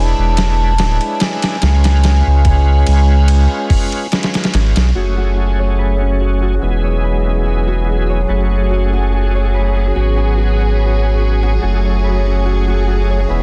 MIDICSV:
0, 0, Header, 1, 8, 480
1, 0, Start_track
1, 0, Key_signature, 3, "minor"
1, 0, Tempo, 833333
1, 934, Time_signature, 4, 2, 24, 8
1, 7735, End_track
2, 0, Start_track
2, 0, Title_t, "Flute"
2, 0, Program_c, 0, 73
2, 0, Note_on_c, 0, 81, 100
2, 704, Note_on_c, 0, 80, 90
2, 713, Note_off_c, 0, 81, 0
2, 2379, Note_off_c, 0, 80, 0
2, 7735, End_track
3, 0, Start_track
3, 0, Title_t, "String section"
3, 0, Program_c, 1, 48
3, 2853, Note_on_c, 1, 68, 68
3, 7735, Note_off_c, 1, 68, 0
3, 7735, End_track
4, 0, Start_track
4, 0, Title_t, "Harp"
4, 0, Program_c, 2, 46
4, 2852, Note_on_c, 2, 66, 68
4, 2978, Note_off_c, 2, 66, 0
4, 2981, Note_on_c, 2, 66, 84
4, 3090, Note_off_c, 2, 66, 0
4, 3093, Note_on_c, 2, 66, 60
4, 3220, Note_on_c, 2, 73, 59
4, 3332, Note_on_c, 2, 71, 68
4, 3461, Note_on_c, 2, 61, 59
4, 3570, Note_off_c, 2, 66, 0
4, 3573, Note_on_c, 2, 66, 63
4, 3697, Note_off_c, 2, 66, 0
4, 3699, Note_on_c, 2, 66, 78
4, 3808, Note_off_c, 2, 66, 0
4, 3810, Note_on_c, 2, 66, 64
4, 3937, Note_off_c, 2, 73, 0
4, 3939, Note_on_c, 2, 73, 61
4, 4049, Note_off_c, 2, 71, 0
4, 4052, Note_on_c, 2, 71, 65
4, 4178, Note_off_c, 2, 61, 0
4, 4180, Note_on_c, 2, 61, 68
4, 4291, Note_off_c, 2, 66, 0
4, 4294, Note_on_c, 2, 66, 61
4, 4419, Note_off_c, 2, 66, 0
4, 4422, Note_on_c, 2, 66, 85
4, 4532, Note_off_c, 2, 66, 0
4, 4534, Note_on_c, 2, 66, 62
4, 4661, Note_off_c, 2, 73, 0
4, 4663, Note_on_c, 2, 73, 66
4, 4772, Note_off_c, 2, 71, 0
4, 4775, Note_on_c, 2, 71, 71
4, 4899, Note_off_c, 2, 61, 0
4, 4902, Note_on_c, 2, 61, 64
4, 5013, Note_off_c, 2, 66, 0
4, 5016, Note_on_c, 2, 66, 62
4, 5143, Note_off_c, 2, 66, 0
4, 5145, Note_on_c, 2, 66, 81
4, 5255, Note_off_c, 2, 66, 0
4, 5258, Note_on_c, 2, 66, 68
4, 5381, Note_off_c, 2, 73, 0
4, 5383, Note_on_c, 2, 73, 62
4, 5493, Note_off_c, 2, 71, 0
4, 5496, Note_on_c, 2, 71, 63
4, 5620, Note_off_c, 2, 61, 0
4, 5623, Note_on_c, 2, 61, 65
4, 5732, Note_off_c, 2, 66, 0
4, 5734, Note_on_c, 2, 66, 72
4, 5859, Note_off_c, 2, 66, 0
4, 5861, Note_on_c, 2, 66, 88
4, 5971, Note_off_c, 2, 66, 0
4, 5973, Note_on_c, 2, 66, 68
4, 6100, Note_off_c, 2, 73, 0
4, 6102, Note_on_c, 2, 73, 71
4, 6212, Note_off_c, 2, 71, 0
4, 6215, Note_on_c, 2, 71, 64
4, 6341, Note_off_c, 2, 61, 0
4, 6343, Note_on_c, 2, 61, 64
4, 6451, Note_off_c, 2, 66, 0
4, 6454, Note_on_c, 2, 66, 64
4, 6580, Note_off_c, 2, 66, 0
4, 6582, Note_on_c, 2, 66, 94
4, 6694, Note_off_c, 2, 66, 0
4, 6696, Note_on_c, 2, 66, 70
4, 6821, Note_off_c, 2, 73, 0
4, 6823, Note_on_c, 2, 73, 67
4, 6932, Note_off_c, 2, 71, 0
4, 6934, Note_on_c, 2, 71, 65
4, 7060, Note_off_c, 2, 61, 0
4, 7062, Note_on_c, 2, 61, 68
4, 7171, Note_off_c, 2, 66, 0
4, 7174, Note_on_c, 2, 66, 72
4, 7301, Note_off_c, 2, 66, 0
4, 7303, Note_on_c, 2, 66, 87
4, 7413, Note_off_c, 2, 66, 0
4, 7415, Note_on_c, 2, 66, 66
4, 7542, Note_off_c, 2, 73, 0
4, 7545, Note_on_c, 2, 73, 69
4, 7655, Note_off_c, 2, 71, 0
4, 7657, Note_on_c, 2, 71, 66
4, 7735, Note_off_c, 2, 61, 0
4, 7735, Note_off_c, 2, 66, 0
4, 7735, Note_off_c, 2, 71, 0
4, 7735, Note_off_c, 2, 73, 0
4, 7735, End_track
5, 0, Start_track
5, 0, Title_t, "Synth drone"
5, 0, Program_c, 3, 95
5, 0, Note_on_c, 3, 73, 90
5, 2854, Note_on_c, 3, 54, 82
5, 2854, Note_on_c, 3, 66, 84
5, 2864, Note_off_c, 3, 73, 0
5, 7735, Note_off_c, 3, 54, 0
5, 7735, Note_off_c, 3, 66, 0
5, 7735, End_track
6, 0, Start_track
6, 0, Title_t, "Tonewheel organ"
6, 0, Program_c, 4, 16
6, 0, Note_on_c, 4, 56, 89
6, 0, Note_on_c, 4, 62, 80
6, 0, Note_on_c, 4, 64, 83
6, 0, Note_on_c, 4, 71, 94
6, 424, Note_off_c, 4, 56, 0
6, 426, Note_off_c, 4, 62, 0
6, 429, Note_off_c, 4, 64, 0
6, 431, Note_off_c, 4, 71, 0
6, 451, Note_on_c, 4, 56, 77
6, 454, Note_on_c, 4, 62, 66
6, 455, Note_on_c, 4, 64, 69
6, 459, Note_on_c, 4, 71, 76
6, 906, Note_off_c, 4, 56, 0
6, 907, Note_off_c, 4, 62, 0
6, 908, Note_off_c, 4, 64, 0
6, 910, Note_off_c, 4, 71, 0
6, 927, Note_on_c, 4, 56, 97
6, 932, Note_on_c, 4, 61, 79
6, 937, Note_on_c, 4, 65, 84
6, 940, Note_on_c, 4, 71, 99
6, 2344, Note_off_c, 4, 56, 0
6, 2346, Note_off_c, 4, 61, 0
6, 2349, Note_off_c, 4, 65, 0
6, 2350, Note_off_c, 4, 71, 0
6, 2373, Note_on_c, 4, 56, 77
6, 2375, Note_on_c, 4, 61, 66
6, 2376, Note_on_c, 4, 65, 66
6, 2379, Note_on_c, 4, 71, 79
6, 2827, Note_off_c, 4, 56, 0
6, 2828, Note_off_c, 4, 61, 0
6, 2828, Note_off_c, 4, 65, 0
6, 2830, Note_off_c, 4, 71, 0
6, 2851, Note_on_c, 4, 54, 63
6, 2855, Note_on_c, 4, 57, 59
6, 2859, Note_on_c, 4, 61, 61
6, 2865, Note_on_c, 4, 68, 71
6, 3768, Note_off_c, 4, 54, 0
6, 3770, Note_off_c, 4, 57, 0
6, 3772, Note_off_c, 4, 61, 0
6, 3775, Note_off_c, 4, 68, 0
6, 3811, Note_on_c, 4, 52, 70
6, 3815, Note_on_c, 4, 56, 62
6, 3818, Note_on_c, 4, 59, 64
6, 3824, Note_on_c, 4, 68, 76
6, 4728, Note_off_c, 4, 52, 0
6, 4730, Note_off_c, 4, 56, 0
6, 4732, Note_off_c, 4, 59, 0
6, 4734, Note_off_c, 4, 68, 0
6, 4768, Note_on_c, 4, 54, 67
6, 4773, Note_on_c, 4, 57, 59
6, 4778, Note_on_c, 4, 61, 58
6, 4781, Note_on_c, 4, 68, 74
6, 5687, Note_off_c, 4, 54, 0
6, 5689, Note_off_c, 4, 57, 0
6, 5692, Note_off_c, 4, 61, 0
6, 5693, Note_off_c, 4, 68, 0
6, 5726, Note_on_c, 4, 54, 71
6, 5731, Note_on_c, 4, 59, 67
6, 5735, Note_on_c, 4, 61, 66
6, 5738, Note_on_c, 4, 68, 79
6, 6646, Note_off_c, 4, 54, 0
6, 6648, Note_off_c, 4, 59, 0
6, 6650, Note_off_c, 4, 61, 0
6, 6652, Note_off_c, 4, 68, 0
6, 6688, Note_on_c, 4, 54, 68
6, 6693, Note_on_c, 4, 57, 59
6, 6699, Note_on_c, 4, 61, 60
6, 6703, Note_on_c, 4, 68, 75
6, 7607, Note_off_c, 4, 54, 0
6, 7609, Note_off_c, 4, 57, 0
6, 7612, Note_off_c, 4, 61, 0
6, 7614, Note_off_c, 4, 68, 0
6, 7648, Note_on_c, 4, 52, 70
6, 7653, Note_on_c, 4, 56, 71
6, 7658, Note_on_c, 4, 59, 66
6, 7662, Note_on_c, 4, 68, 83
6, 7735, Note_off_c, 4, 52, 0
6, 7735, Note_off_c, 4, 56, 0
6, 7735, Note_off_c, 4, 59, 0
6, 7735, Note_off_c, 4, 68, 0
6, 7735, End_track
7, 0, Start_track
7, 0, Title_t, "Sub bass"
7, 0, Program_c, 5, 38
7, 0, Note_on_c, 5, 28, 99
7, 78, Note_off_c, 5, 28, 0
7, 105, Note_on_c, 5, 28, 91
7, 458, Note_on_c, 5, 26, 92
7, 467, Note_off_c, 5, 28, 0
7, 569, Note_off_c, 5, 26, 0
7, 936, Note_on_c, 5, 37, 94
7, 1279, Note_off_c, 5, 37, 0
7, 1307, Note_on_c, 5, 37, 80
7, 1635, Note_off_c, 5, 37, 0
7, 1657, Note_on_c, 5, 37, 105
7, 1999, Note_off_c, 5, 37, 0
7, 2616, Note_on_c, 5, 32, 92
7, 2728, Note_off_c, 5, 32, 0
7, 2744, Note_on_c, 5, 35, 99
7, 2842, Note_off_c, 5, 35, 0
7, 2856, Note_on_c, 5, 30, 72
7, 3793, Note_off_c, 5, 30, 0
7, 3816, Note_on_c, 5, 28, 85
7, 4753, Note_off_c, 5, 28, 0
7, 4774, Note_on_c, 5, 30, 83
7, 5712, Note_off_c, 5, 30, 0
7, 5737, Note_on_c, 5, 32, 88
7, 6673, Note_off_c, 5, 32, 0
7, 6698, Note_on_c, 5, 30, 80
7, 7634, Note_off_c, 5, 30, 0
7, 7658, Note_on_c, 5, 28, 91
7, 7735, Note_off_c, 5, 28, 0
7, 7735, End_track
8, 0, Start_track
8, 0, Title_t, "Drums"
8, 214, Note_on_c, 9, 51, 79
8, 221, Note_on_c, 9, 38, 106
8, 271, Note_off_c, 9, 51, 0
8, 278, Note_off_c, 9, 38, 0
8, 452, Note_on_c, 9, 51, 71
8, 459, Note_on_c, 9, 38, 92
8, 509, Note_off_c, 9, 51, 0
8, 516, Note_off_c, 9, 38, 0
8, 580, Note_on_c, 9, 51, 41
8, 638, Note_off_c, 9, 51, 0
8, 692, Note_on_c, 9, 51, 77
8, 699, Note_on_c, 9, 38, 108
8, 750, Note_off_c, 9, 51, 0
8, 757, Note_off_c, 9, 38, 0
8, 820, Note_on_c, 9, 51, 76
8, 827, Note_on_c, 9, 38, 102
8, 878, Note_off_c, 9, 51, 0
8, 885, Note_off_c, 9, 38, 0
8, 932, Note_on_c, 9, 51, 75
8, 939, Note_on_c, 9, 38, 101
8, 989, Note_off_c, 9, 51, 0
8, 996, Note_off_c, 9, 38, 0
8, 1060, Note_on_c, 9, 51, 72
8, 1067, Note_on_c, 9, 38, 98
8, 1118, Note_off_c, 9, 51, 0
8, 1125, Note_off_c, 9, 38, 0
8, 1172, Note_on_c, 9, 51, 76
8, 1179, Note_on_c, 9, 38, 96
8, 1230, Note_off_c, 9, 51, 0
8, 1237, Note_off_c, 9, 38, 0
8, 1410, Note_on_c, 9, 51, 60
8, 1412, Note_on_c, 9, 36, 86
8, 1468, Note_off_c, 9, 51, 0
8, 1470, Note_off_c, 9, 36, 0
8, 1650, Note_on_c, 9, 51, 82
8, 1708, Note_off_c, 9, 51, 0
8, 1890, Note_on_c, 9, 51, 83
8, 1948, Note_off_c, 9, 51, 0
8, 2131, Note_on_c, 9, 46, 75
8, 2132, Note_on_c, 9, 36, 89
8, 2189, Note_off_c, 9, 46, 0
8, 2190, Note_off_c, 9, 36, 0
8, 2260, Note_on_c, 9, 51, 46
8, 2318, Note_off_c, 9, 51, 0
8, 2372, Note_on_c, 9, 51, 54
8, 2379, Note_on_c, 9, 38, 79
8, 2430, Note_off_c, 9, 51, 0
8, 2436, Note_on_c, 9, 51, 59
8, 2437, Note_off_c, 9, 38, 0
8, 2443, Note_on_c, 9, 38, 77
8, 2494, Note_off_c, 9, 51, 0
8, 2500, Note_on_c, 9, 51, 62
8, 2501, Note_off_c, 9, 38, 0
8, 2507, Note_on_c, 9, 38, 79
8, 2556, Note_off_c, 9, 51, 0
8, 2556, Note_on_c, 9, 51, 59
8, 2563, Note_off_c, 9, 38, 0
8, 2563, Note_on_c, 9, 38, 78
8, 2613, Note_off_c, 9, 51, 0
8, 2613, Note_on_c, 9, 51, 83
8, 2620, Note_off_c, 9, 38, 0
8, 2620, Note_on_c, 9, 38, 104
8, 2671, Note_off_c, 9, 51, 0
8, 2677, Note_off_c, 9, 38, 0
8, 2741, Note_on_c, 9, 51, 76
8, 2748, Note_on_c, 9, 38, 97
8, 2799, Note_off_c, 9, 51, 0
8, 2806, Note_off_c, 9, 38, 0
8, 7735, End_track
0, 0, End_of_file